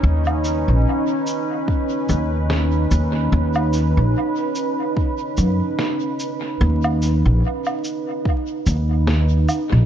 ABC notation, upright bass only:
X:1
M:4/4
L:1/16
Q:"Swing 16ths" 1/4=73
K:Cblyd
V:1 name="Upright bass" clef=bass
^D,,3 B,,, z6 D,,4 D,,2 | ^D,,3 B,,, z6 ^F,, z4 z | ^D,,3 B,,, z6 D,,4 z B,,, |]